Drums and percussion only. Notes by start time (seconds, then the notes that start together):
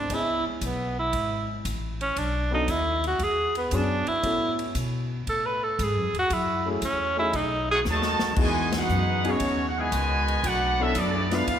0.10 kick, ride
0.61 kick, hi-hat pedal, ride
1.13 kick, ride
1.65 kick, hi-hat pedal, ride
2.01 ride
2.16 kick, ride
2.68 kick, hi-hat pedal, ride
3.04 ride
3.19 kick, ride
3.55 ride
3.71 kick, hi-hat pedal, ride
4.07 ride
4.23 kick, ride
4.59 ride
4.75 kick, hi-hat pedal, ride
5.27 kick, ride
5.79 kick, hi-hat pedal, ride
6.14 ride
6.30 kick, ride
6.82 kick, hi-hat pedal, ride
7.33 kick, ride
7.85 snare, hi-hat pedal
8.02 snare
8.19 snare
8.36 kick, crash
8.72 snare, ride
8.89 hi-hat pedal
9.25 ride
9.40 kick, ride
9.92 kick, hi-hat pedal, ride
10.28 ride
10.44 kick, ride
10.95 kick, hi-hat pedal, ride
11.31 snare, ride
11.47 kick, ride